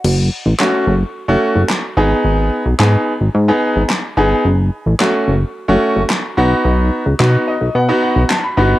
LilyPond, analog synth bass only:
\new Staff \with { instrumentName = "Analog synth bass" } { \clef bass \time 4/4 \key fis \dorian \tempo 4 = 109 fis,,8. a,,16 r8 fis,,8 r16 fis,,16 r16 fis,,16 r8 gis,,8 | gis,,8. b,,16 gis,8 r16 gis,,16 gis,8 r16 gis,,16 r8 g,,8 | fis,,8. a,,16 r8 fis,,8 r16 fis,,16 r16 fis,,16 r8 b,,8 | b,,8. cis,16 b,8 r16 b,,16 b,8 r16 b,,16 r8 g,,8 | }